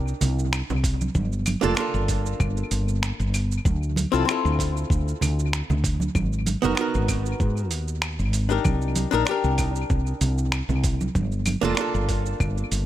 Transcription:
Already playing: fretless electric bass C2, hollow-body jazz guitar D4 D#4 G4 A#4
0.08 shaker
0.21 fretless electric bass C2, open hi-hat, low conga, shaker
0.39 shaker
0.53 finger snap, claves, shaker
0.70 fretless electric bass C2, low conga, shaker
0.84 kick, open hi-hat, shaker
1.01 high conga, shaker
1.15 fretless electric bass G1, kick, high conga, shaker
1.32 shaker
1.46 open hi-hat, high conga, claves, shaker
1.61 fretless electric bass F1, hollow-body jazz guitar A#3 D4 F4 A4, low conga, shaker
1.75 hollow-body jazz guitar A#3 D4 F4, finger snap, shaker
1.80 hollow-body jazz guitar A4
1.94 fretless electric bass G1, shaker
2.08 kick, open hi-hat, shaker
2.26 shaker
2.40 fretless electric bass G1, kick, claves, shaker
2.57 shaker
2.71 fretless electric bass G1, open hi-hat, shaker
2.88 shaker
3.03 finger snap, shaker
3.20 fretless electric bass G1, shaker
3.34 open hi-hat, claves, shaker
3.52 shaker
3.65 fretless electric bass D2, kick, high conga, shaker
3.83 shaker
3.96 open hi-hat, high conga, shaker
4.12 fretless electric bass C2, hollow-body jazz guitar C4 E4 F4 A4, shaker
4.25 hollow-body jazz guitar C4 E4 F4, finger snap, claves
4.29 hollow-body jazz guitar A4, shaker
4.45 fretless electric bass D2, shaker
4.59 kick, open hi-hat, shaker
4.77 shaker
4.90 fretless electric bass D2, kick, shaker
5.08 shaker
5.21 fretless electric bass D2, open hi-hat, low conga, claves, shaker
5.39 shaker
5.53 finger snap, shaker
5.70 fretless electric bass D2, low conga, shaker
5.84 kick, open hi-hat, shaker
6.00 high conga, shaker
6.15 fretless electric bass G#1, kick, high conga, claves, shaker
6.33 shaker
6.46 open hi-hat, high conga, shaker
6.62 fretless electric bass F#1, hollow-body jazz guitar B3 D#4 F#4 A#4, low conga, shaker
6.75 hollow-body jazz guitar B3 D#4 F#4, finger snap, shaker
6.81 hollow-body jazz guitar A#4
6.94 fretless electric bass G#1, shaker
7.08 kick, open hi-hat, claves, shaker
7.26 shaker
7.40 fretless electric bass G#2, kick, shaker
7.57 shaker
7.71 fretless electric bass D#2, open hi-hat, shaker
7.88 shaker
8.02 finger snap, claves, shaker
8.19 fretless electric bass G#1, shaker
8.33 open hi-hat, shaker
8.49 hollow-body jazz guitar D4 D#4 G4 A#4, shaker
8.64 fretless electric bass C2, kick, high conga, claves, shaker
8.82 shaker
8.95 open hi-hat, high conga, shaker
9.11 fretless electric bass A#1, hollow-body jazz guitar D4 D#4 A#4, shaker
9.25 hollow-body jazz guitar D4 D#4 G4, finger snap, shaker
9.31 hollow-body jazz guitar A#4
9.44 fretless electric bass C2, shaker
9.58 kick, open hi-hat, claves, shaker
9.76 shaker
9.90 fretless electric bass C2, kick, shaker
10.07 shaker
10.21 fretless electric bass C2, open hi-hat, low conga, shaker
10.38 shaker
10.52 finger snap, claves, shaker
10.69 fretless electric bass C2, low conga, shaker
10.84 kick, open hi-hat, shaker
11.01 high conga, shaker
11.15 fretless electric bass G1, kick, high conga, shaker
11.32 shaker
11.46 open hi-hat, high conga, claves, shaker
11.61 fretless electric bass F1, hollow-body jazz guitar A#3 D4 F4 A4, low conga, shaker
11.75 hollow-body jazz guitar A#3 D4, finger snap, shaker
11.79 hollow-body jazz guitar F4 A4
11.94 fretless electric bass G1, shaker
12.09 kick, open hi-hat, shaker
12.26 shaker
12.40 fretless electric bass G1, kick, claves, shaker
12.58 shaker
12.71 fretless electric bass G1, open hi-hat, shaker

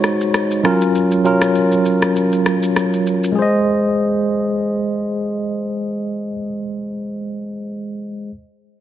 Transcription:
Already playing: tine electric piano G#3 D#4 F#4 C5 C#5
0.04 cross-stick, shaker
0.21 shaker
0.34 cross-stick, shaker
0.51 shaker
0.63 tine electric piano F#3 C#4 F4 A#4, cross-stick, shaker
0.82 shaker
0.95 shaker
1.12 shaker
1.24 tine electric piano F#3 C#4 F4 A#4, shaker
1.42 cross-stick, shaker
1.55 shaker
1.72 shaker
1.85 shaker
2.02 cross-stick, shaker
2.16 shaker
2.33 shaker
2.46 cross-stick, shaker
2.63 shaker
2.76 cross-stick, shaker
2.93 shaker
3.07 shaker
3.24 shaker
3.32 tine electric piano G#3 G#4
3.39 tine electric piano C5 D#5

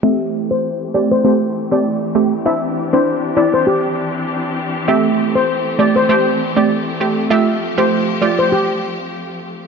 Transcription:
0.03 string section E3 A3 C4 G4, synth pluck A3 C4 G4, steel pan E5
0.51 steel pan C5
0.94 synth pluck A3 C4 G4, steel pan D5
1.11 steel pan C5
1.24 synth pluck A3 C4 G4, steel pan C5
1.71 synth pluck A3 C4 G4, steel pan D5
2.15 synth pluck A3 C4 G4
2.46 synth pluck C4 D4 E4, string section D4, steel pan E5
2.93 synth pluck C4 D4 E4, steel pan C5
3.37 synth pluck C4 D4 E4, steel pan D5
3.54 steel pan C5
3.67 steel pan G4
4.88 synth pluck A3 C4 G4, string section A3, steel pan E5
5.35 steel pan C5
5.79 synth pluck A3 C4 G4, steel pan D5
5.96 steel pan C5
6.09 synth pluck A3 C4 G4, steel pan C5
6.57 synth pluck A3 C4 G4, steel pan D5
7.00 synth pluck A3 C4 G4
7.30 string section F3 G4, synth pluck A3 F4 G4, steel pan E5
7.78 synth pluck A3 F4 G4, steel pan C5
8.22 synth pluck A3 F4 G4, steel pan D5
8.39 steel pan C5
8.52 steel pan G4

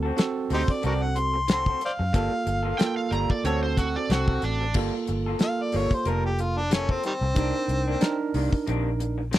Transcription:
Already playing: fingered electric bass D2, tine electric piano C4 F#4 A4
0.03 clean electric guitar C4 F#4 A4
0.17 tine electric piano C4 F#4 A4, muted clean electric guitar stroke, snare, closed hi-hat
0.50 fingered electric bass D2, clean electric guitar D3 C4 F#4 A4, harmonica D#4 G4 C5, open hi-hat
0.68 harmonica D5, muted clean electric guitar stroke, kick
0.82 fingered electric bass C2, clean electric guitar D3 C4 F#4 A4, harmonica F#4 A#4 D5, closed hi-hat
1.03 harmonica F#5
1.16 harmonica C6, muted clean electric guitar stroke, closed hi-hat
1.34 muted clean electric guitar stroke
1.48 clean electric guitar D3 C4 F#4 A4, snare, closed hi-hat
1.52 harmonica C6
1.66 clean electric guitar C4 F#4 A4, kick
1.81 muted clean electric guitar stroke, closed hi-hat
1.85 harmonica C5 D5 F5
1.99 fingered electric bass F#2, muted clean electric guitar stroke
2.13 fingered electric bass G1, clean electric guitar G3 A#3 F4 A4, tine electric piano A#3 F4 A4, kick, closed hi-hat
2.31 muted clean electric guitar stroke
2.46 fingered electric bass G1, muted clean electric guitar stroke, closed hi-hat
2.63 clean electric guitar A#3 F4 A4
2.78 tine electric piano A#3 F4 A4, electric slide guitar G5, muted clean electric guitar stroke, snare, closed hi-hat
2.97 electric slide guitar F5
3.11 fingered electric bass G1, clean electric guitar G3 A#3 F4 A4, electric slide guitar A#5, closed hi-hat
3.30 electric slide guitar D5, muted clean electric guitar stroke, kick
3.44 fingered electric bass D2, clean electric guitar D3 C4 F#4 A4, tine electric piano C4 F#4 A4, electric slide guitar C#5, closed hi-hat
3.63 electric slide guitar C5
3.77 electric slide guitar F#4, muted clean electric guitar stroke, kick, closed hi-hat
3.96 electric slide guitar D5, muted clean electric guitar stroke
4.09 fingered electric bass C2, clean electric guitar D3 C4 F#4 A4, electric slide guitar F#4, snare, closed hi-hat
4.28 clean electric guitar C4 F#4 A4, kick
4.42 fingered electric bass A1, electric slide guitar D4, muted clean electric guitar stroke, closed hi-hat
4.61 muted clean electric guitar stroke
4.74 fingered electric bass G1, clean electric guitar G3 A#3 F4 A4, tine electric piano A#3 F4 A4, kick, crash
4.94 muted clean electric guitar stroke
5.07 fingered electric bass G1, muted clean electric guitar stroke, closed hi-hat
5.26 clean electric guitar A#3 F4 A4
5.39 tine electric piano A#3 F4 A4, muted clean electric guitar stroke, snare, closed hi-hat
5.44 harmonica F5
5.62 harmonica D5
5.72 fingered electric bass G1, clean electric guitar G3 A#3 F4 A4, open hi-hat
5.77 harmonica C#5
5.91 harmonica C5, muted clean electric guitar stroke, kick
6.05 fingered electric bass F1, clean electric guitar G3 A#3 F4 A4, harmonica A#4, closed hi-hat
6.25 harmonica G4
6.39 harmonica F4, muted clean electric guitar stroke, closed hi-hat
6.57 harmonica D4, muted clean electric guitar stroke
6.70 clean electric guitar G3 A#3 F4 A4, harmonica C#4, snare, closed hi-hat
6.89 clean electric guitar A#3 F4 A4, harmonica C4, kick
7.03 harmonica D#3 G3 C4, muted clean electric guitar stroke, closed hi-hat
7.21 fingered electric bass C2, muted clean electric guitar stroke
7.35 fingered electric bass C2, clean electric guitar C3 D#3 A#3, tine electric piano D4 D#4 A#4, kick, closed hi-hat
7.39 clean electric guitar D4
7.56 muted clean electric guitar stroke
7.68 fingered electric bass C2, muted clean electric guitar stroke, closed hi-hat
7.88 clean electric guitar D#3 A#3 D4
8.01 tine electric piano D4 D#4 A#4, muted clean electric guitar stroke, snare, closed hi-hat
8.34 fingered electric bass C2, clean electric guitar C3 D#3 A#3 D4, open hi-hat
8.53 muted clean electric guitar stroke, kick
8.67 fingered electric bass A#1, clean electric guitar C3 D#3 A#3 D4, closed hi-hat
9.00 muted clean electric guitar stroke, closed hi-hat
9.18 muted clean electric guitar stroke
9.31 clean electric guitar C3 D#3 A#3 D4, snare, closed hi-hat

